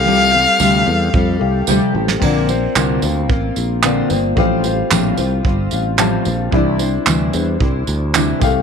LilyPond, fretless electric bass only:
\new Staff \with { instrumentName = "Fretless electric bass" } { \clef bass \time 4/4 \key f \major \tempo 4 = 111 c,4 d,8 e,8 f,8 c,8 d,16 r16 a,,8 | bes,,4 c,8 d,8 a,,8 bes,,4 g,,8 | a,,4 bes,,8 c,8 g,,8 a,,4 bes,,8 | c,4 d,8 e,8 c,8 d,4 c,8 | }